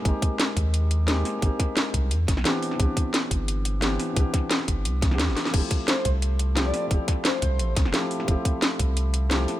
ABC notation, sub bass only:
X:1
M:4/4
L:1/16
Q:1/4=175
K:Flyd
V:1 name="Sub bass" clef=bass
_A,,, z4 z _E,,8 z2 | _A,,, z4 z C,,2 E,,2 G,,, C,, z4 | C,, z4 z G,,,8 z2 | C,, z4 z G,,,2 C,,4 E,, G,,, z2 |
F,,, z4 z C,,8 z2 | F,,, z4 z C,,2 A,,,2 C,, F,,, z4 | F,,, z4 z C,,8 z2 |]